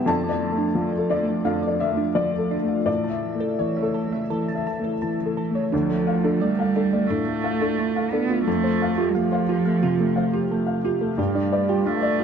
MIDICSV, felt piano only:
0, 0, Header, 1, 2, 480
1, 0, Start_track
1, 0, Key_signature, -1, "minor"
1, 0, Tempo, 689655
1, 50, Time_signature, 4, 2, 24, 8
1, 1010, Tempo, 710900
1, 3890, Tempo, 681044
1, 8487, End_track
2, 0, Start_track
2, 0, Title_t, "Felt piano"
2, 0, Program_c, 0, 0
2, 0, Control_c, 0, 64, 127
2, 40, Note_on_c, 0, 41, 66
2, 52, Note_on_c, 0, 81, 93
2, 63, Control_c, 0, 64, 0
2, 178, Control_c, 0, 64, 127
2, 203, Note_on_c, 0, 74, 50
2, 361, Note_on_c, 0, 57, 40
2, 461, Note_off_c, 0, 74, 0
2, 519, Note_on_c, 0, 53, 45
2, 620, Note_off_c, 0, 57, 0
2, 682, Note_on_c, 0, 69, 44
2, 741, Note_off_c, 0, 81, 0
2, 768, Note_on_c, 0, 74, 62
2, 780, Note_off_c, 0, 53, 0
2, 845, Note_on_c, 0, 57, 38
2, 943, Note_off_c, 0, 69, 0
2, 978, Note_off_c, 0, 41, 0
2, 993, Note_off_c, 0, 74, 0
2, 1006, Note_on_c, 0, 41, 53
2, 1008, Note_on_c, 0, 77, 62
2, 1104, Note_off_c, 0, 57, 0
2, 1162, Note_on_c, 0, 74, 45
2, 1230, Note_off_c, 0, 77, 0
2, 1248, Note_on_c, 0, 76, 67
2, 1319, Note_on_c, 0, 57, 39
2, 1420, Note_off_c, 0, 74, 0
2, 1471, Note_off_c, 0, 76, 0
2, 1482, Note_on_c, 0, 53, 35
2, 1482, Note_on_c, 0, 74, 68
2, 1579, Note_off_c, 0, 57, 0
2, 1639, Note_on_c, 0, 69, 38
2, 1740, Note_off_c, 0, 53, 0
2, 1802, Note_on_c, 0, 57, 40
2, 1899, Note_off_c, 0, 69, 0
2, 1937, Note_off_c, 0, 74, 0
2, 1938, Note_off_c, 0, 41, 0
2, 1959, Note_on_c, 0, 45, 54
2, 1960, Note_on_c, 0, 74, 66
2, 1965, Note_off_c, 0, 57, 0
2, 1981, Control_c, 0, 64, 0
2, 2096, Control_c, 0, 64, 127
2, 2121, Note_on_c, 0, 76, 40
2, 2289, Note_on_c, 0, 57, 41
2, 2384, Note_off_c, 0, 76, 0
2, 2422, Note_off_c, 0, 74, 0
2, 2452, Note_on_c, 0, 73, 43
2, 2456, Note_on_c, 0, 52, 33
2, 2548, Note_off_c, 0, 57, 0
2, 2612, Note_on_c, 0, 69, 44
2, 2712, Note_off_c, 0, 52, 0
2, 2782, Note_on_c, 0, 57, 38
2, 2871, Note_off_c, 0, 69, 0
2, 2906, Note_off_c, 0, 45, 0
2, 2937, Note_on_c, 0, 52, 44
2, 3037, Note_off_c, 0, 57, 0
2, 3102, Note_on_c, 0, 76, 43
2, 3194, Note_off_c, 0, 52, 0
2, 3264, Note_on_c, 0, 57, 35
2, 3355, Note_off_c, 0, 76, 0
2, 3389, Note_off_c, 0, 73, 0
2, 3423, Note_on_c, 0, 52, 36
2, 3514, Note_off_c, 0, 57, 0
2, 3579, Note_on_c, 0, 69, 33
2, 3674, Note_off_c, 0, 52, 0
2, 3745, Note_on_c, 0, 57, 41
2, 3831, Note_off_c, 0, 69, 0
2, 3897, Note_off_c, 0, 57, 0
2, 3901, Note_on_c, 0, 38, 64
2, 3904, Control_c, 0, 64, 0
2, 4002, Control_c, 0, 64, 127
2, 4020, Note_on_c, 0, 57, 43
2, 4140, Note_on_c, 0, 77, 50
2, 4212, Note_off_c, 0, 57, 0
2, 4260, Note_on_c, 0, 69, 52
2, 4333, Note_off_c, 0, 77, 0
2, 4390, Note_on_c, 0, 57, 45
2, 4452, Note_off_c, 0, 69, 0
2, 4511, Note_on_c, 0, 77, 49
2, 4578, Note_off_c, 0, 57, 0
2, 4627, Note_on_c, 0, 69, 44
2, 4698, Note_off_c, 0, 77, 0
2, 4745, Note_on_c, 0, 57, 48
2, 4816, Note_off_c, 0, 69, 0
2, 4837, Note_off_c, 0, 38, 0
2, 4866, Note_on_c, 0, 45, 51
2, 4935, Note_off_c, 0, 57, 0
2, 4987, Note_on_c, 0, 57, 50
2, 5056, Note_off_c, 0, 45, 0
2, 5105, Note_on_c, 0, 77, 44
2, 5177, Note_off_c, 0, 57, 0
2, 5227, Note_on_c, 0, 69, 47
2, 5297, Note_off_c, 0, 77, 0
2, 5347, Note_on_c, 0, 57, 42
2, 5418, Note_off_c, 0, 69, 0
2, 5473, Note_on_c, 0, 77, 46
2, 5539, Note_off_c, 0, 57, 0
2, 5590, Note_on_c, 0, 69, 48
2, 5662, Note_off_c, 0, 77, 0
2, 5714, Note_on_c, 0, 57, 48
2, 5780, Note_off_c, 0, 69, 0
2, 5830, Note_off_c, 0, 57, 0
2, 5832, Note_on_c, 0, 41, 65
2, 5838, Control_c, 0, 64, 0
2, 5950, Control_c, 0, 64, 127
2, 5961, Note_on_c, 0, 57, 44
2, 6078, Note_on_c, 0, 77, 53
2, 6145, Note_off_c, 0, 57, 0
2, 6200, Note_on_c, 0, 67, 52
2, 6263, Note_off_c, 0, 77, 0
2, 6312, Note_on_c, 0, 57, 46
2, 6384, Note_off_c, 0, 67, 0
2, 6436, Note_on_c, 0, 77, 53
2, 6500, Note_off_c, 0, 57, 0
2, 6552, Note_on_c, 0, 67, 51
2, 6621, Note_off_c, 0, 77, 0
2, 6667, Note_on_c, 0, 57, 52
2, 6739, Note_off_c, 0, 67, 0
2, 6758, Note_off_c, 0, 41, 0
2, 6786, Note_on_c, 0, 48, 51
2, 6856, Note_off_c, 0, 57, 0
2, 6903, Note_on_c, 0, 57, 56
2, 6976, Note_off_c, 0, 48, 0
2, 7020, Note_on_c, 0, 77, 48
2, 7094, Note_off_c, 0, 57, 0
2, 7146, Note_on_c, 0, 67, 44
2, 7213, Note_off_c, 0, 77, 0
2, 7266, Note_on_c, 0, 57, 46
2, 7335, Note_off_c, 0, 67, 0
2, 7377, Note_on_c, 0, 77, 45
2, 7455, Note_off_c, 0, 57, 0
2, 7503, Note_on_c, 0, 67, 55
2, 7570, Note_off_c, 0, 77, 0
2, 7621, Note_on_c, 0, 57, 47
2, 7693, Note_off_c, 0, 67, 0
2, 7738, Note_on_c, 0, 43, 64
2, 7740, Note_off_c, 0, 57, 0
2, 7753, Control_c, 0, 64, 0
2, 7858, Note_on_c, 0, 62, 53
2, 7877, Control_c, 0, 64, 127
2, 7984, Note_on_c, 0, 74, 52
2, 8049, Note_off_c, 0, 62, 0
2, 8099, Note_on_c, 0, 65, 52
2, 8171, Note_off_c, 0, 74, 0
2, 8217, Note_on_c, 0, 62, 45
2, 8289, Note_off_c, 0, 65, 0
2, 8337, Note_on_c, 0, 74, 54
2, 8406, Note_off_c, 0, 62, 0
2, 8457, Note_on_c, 0, 65, 50
2, 8487, Note_off_c, 0, 43, 0
2, 8487, Note_off_c, 0, 65, 0
2, 8487, Note_off_c, 0, 74, 0
2, 8487, End_track
0, 0, End_of_file